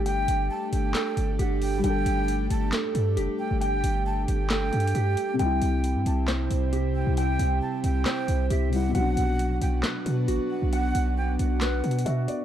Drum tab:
HH |x--x-----x--x--x--x--o--|x--x--x--x--x--x--x-----|x--x-----x--x--xxxx--x--|x--x--x--x--x--x--x-----|
CP |------------x-----------|------------x-----------|------------x-----------|------------x-----------|
SD |------------o-----------|------------o-----------|------------o-----------|------------o-----------|

HH |x--x-----x--x--x--x--o--|x--x--x--x--x--x--x-----|x--x-----x--x--xxxx--x--|
CP |------------x-----------|------------x-----------|------------x-----------|
SD |------------o-----------|------------o-----------|------------o-----------|